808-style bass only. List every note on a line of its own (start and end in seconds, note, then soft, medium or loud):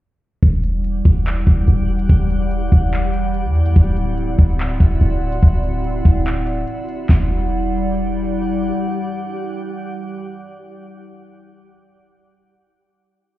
0.43 1.03 E1 loud
1.05 1.45 E1 loud
1.47 1.67 E1 loud
1.68 2.08 E1 loud
2.09 2.69 E1 loud
2.72 3.46 E1 loud
3.45 3.75 E2 loud
3.76 4.36 D1 loud
4.39 4.79 D1 loud
4.80 5.00 D1 loud
5.01 5.41 D1 loud
5.43 6.03 D1 loud
6.05 6.65 D1 loud
7.09 8.72 E1 loud